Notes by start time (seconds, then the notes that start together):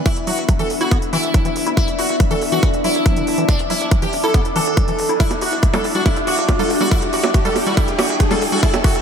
Already playing: B3 D4 E4 E5, riser
0.06 E3 E4, kick, closed hi-hat
0.16 E1, closed hi-hat
0.27 E1 F#3 F#4, open hi-hat
0.38 F#1, closed hi-hat
0.49 F#3, kick, closed hi-hat
0.59 E1 E3 A4, closed hi-hat
0.70 E1, open hi-hat
0.81 E1 E4 F#4, closed hi-hat
0.91 B3, kick, closed hi-hat
1.02 E1, closed hi-hat
1.13 E1 E3 E4, open hi-hat
1.24 E1, closed hi-hat
1.34 F#3, kick, closed hi-hat
1.45 E1 E3, closed hi-hat
1.56 E1, open hi-hat
1.66 E1 E4, closed hi-hat
1.77 E3 E4, kick, closed hi-hat
1.88 E1, closed hi-hat
1.99 E1 E4 F#4, open hi-hat
2.09 F#1, closed hi-hat
2.20 F#3, kick, closed hi-hat
2.31 E1 E3 A4, closed hi-hat
2.41 E1, open hi-hat
2.52 E3 F#4, closed hi-hat
2.63 E3, kick, closed hi-hat
2.74 E1, closed hi-hat
2.84 E1 F#3 E4, open hi-hat
2.95 E1, closed hi-hat
3.06 F#3, kick, closed hi-hat
3.16 E1 D3, closed hi-hat
3.27 E1, open hi-hat
3.38 E1 E3, closed hi-hat
3.49 E3 D4, kick, closed hi-hat
3.59 E1, closed hi-hat
3.70 E1 F#3 E4, open hi-hat
3.81 F#1, closed hi-hat
3.91 F#3, kick, closed hi-hat
4.02 E1 E3 G4, closed hi-hat
4.13 E1, open hi-hat
4.24 E1 E4 A4, closed hi-hat
4.34 B3, kick, closed hi-hat
4.45 E1, closed hi-hat
4.56 E1 E3 A4, open hi-hat
4.66 E1, closed hi-hat
4.77 F#3, kick, closed hi-hat
4.88 E1 E3, closed hi-hat
4.99 E1, open hi-hat
5.09 E1 E4, closed hi-hat
5.20 G3 D4 E4, kick, closed hi-hat
5.31 G1 G4, closed hi-hat, high bongo
5.41 G1 F#4 G4, open hi-hat
5.52 A1, closed hi-hat
5.63 A3, kick, closed hi-hat
5.74 G3 A4, closed hi-hat, high bongo
5.84 G1, open hi-hat
5.95 G1 G3 F#4, closed hi-hat
6.06 G3 E4, kick, closed hi-hat, high bongo
6.16 G1, closed hi-hat
6.27 G1 F#4 G4, open hi-hat
6.38 G1, closed hi-hat
6.49 A3, kick, closed hi-hat, high bongo
6.59 G1 G3 A4, closed hi-hat
6.67 G1 G5, open hi-hat
6.81 G3 F#4, closed hi-hat, high bongo
6.91 G3 E4, kick, closed hi-hat
7.02 G1, closed hi-hat
7.13 G1 F#4 G4, open hi-hat
7.24 closed hi-hat, high bongo
7.34 A3, kick, closed hi-hat
7.45 G1 G3 A4, closed hi-hat
7.56 open hi-hat, high bongo
7.66 G1 G3 F#4, closed hi-hat
7.77 G3 E4, kick, closed hi-hat
7.88 G1, closed hi-hat
7.99 F#4 G4, open hi-hat, high bongo
8.09 G1, closed hi-hat
8.20 A3, kick, closed hi-hat
8.31 G3 A4, closed hi-hat, high bongo
8.41 G1, open hi-hat
8.52 G1 G3 F#4, closed hi-hat
8.63 G3 E4, kick, closed hi-hat
8.74 closed hi-hat, high bongo
8.84 G1 F#4 G4, kick, open hi-hat
8.95 A1, closed hi-hat